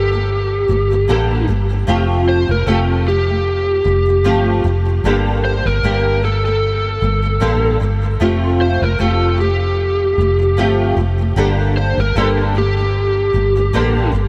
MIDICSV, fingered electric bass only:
0, 0, Header, 1, 2, 480
1, 0, Start_track
1, 0, Tempo, 790514
1, 1141, Time_signature, 4, 2, 24, 8
1, 8671, End_track
2, 0, Start_track
2, 0, Title_t, "Fingered electric bass"
2, 0, Program_c, 0, 33
2, 0, Note_on_c, 0, 31, 93
2, 396, Note_off_c, 0, 31, 0
2, 418, Note_on_c, 0, 31, 85
2, 640, Note_off_c, 0, 31, 0
2, 662, Note_on_c, 0, 33, 78
2, 882, Note_off_c, 0, 33, 0
2, 897, Note_on_c, 0, 31, 81
2, 1120, Note_off_c, 0, 31, 0
2, 1140, Note_on_c, 0, 29, 78
2, 1488, Note_off_c, 0, 29, 0
2, 1512, Note_on_c, 0, 29, 77
2, 1612, Note_off_c, 0, 29, 0
2, 1619, Note_on_c, 0, 29, 91
2, 2316, Note_off_c, 0, 29, 0
2, 2340, Note_on_c, 0, 29, 89
2, 2581, Note_off_c, 0, 29, 0
2, 2581, Note_on_c, 0, 31, 75
2, 2802, Note_off_c, 0, 31, 0
2, 2819, Note_on_c, 0, 29, 68
2, 3041, Note_off_c, 0, 29, 0
2, 3059, Note_on_c, 0, 31, 85
2, 3408, Note_off_c, 0, 31, 0
2, 3434, Note_on_c, 0, 31, 78
2, 3533, Note_off_c, 0, 31, 0
2, 3540, Note_on_c, 0, 31, 93
2, 4236, Note_off_c, 0, 31, 0
2, 4262, Note_on_c, 0, 31, 85
2, 4482, Note_off_c, 0, 31, 0
2, 4501, Note_on_c, 0, 33, 74
2, 4722, Note_off_c, 0, 33, 0
2, 4742, Note_on_c, 0, 31, 80
2, 4962, Note_off_c, 0, 31, 0
2, 4982, Note_on_c, 0, 29, 76
2, 5329, Note_off_c, 0, 29, 0
2, 5354, Note_on_c, 0, 29, 83
2, 5453, Note_off_c, 0, 29, 0
2, 5462, Note_on_c, 0, 29, 91
2, 6156, Note_off_c, 0, 29, 0
2, 6180, Note_on_c, 0, 29, 88
2, 6419, Note_off_c, 0, 29, 0
2, 6419, Note_on_c, 0, 31, 80
2, 6640, Note_off_c, 0, 31, 0
2, 6658, Note_on_c, 0, 29, 69
2, 6879, Note_off_c, 0, 29, 0
2, 6899, Note_on_c, 0, 31, 83
2, 7247, Note_off_c, 0, 31, 0
2, 7271, Note_on_c, 0, 31, 77
2, 7371, Note_off_c, 0, 31, 0
2, 7380, Note_on_c, 0, 31, 95
2, 8074, Note_off_c, 0, 31, 0
2, 8099, Note_on_c, 0, 31, 82
2, 8319, Note_off_c, 0, 31, 0
2, 8339, Note_on_c, 0, 33, 70
2, 8559, Note_off_c, 0, 33, 0
2, 8577, Note_on_c, 0, 31, 79
2, 8671, Note_off_c, 0, 31, 0
2, 8671, End_track
0, 0, End_of_file